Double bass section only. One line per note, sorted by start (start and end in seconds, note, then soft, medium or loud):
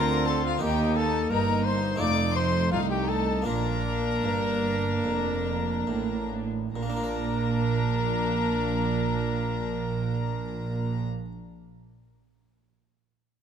0.00 0.61 D2 medium
0.62 1.30 D#2 medium
1.31 1.99 G1 medium
2.01 2.71 F1 medium
2.72 3.47 C2 medium
3.47 4.23 A#1 medium
4.24 5.04 G1 medium
5.05 5.86 F1 medium
5.88 6.74 A1 medium
6.76 11.04 A#1 medium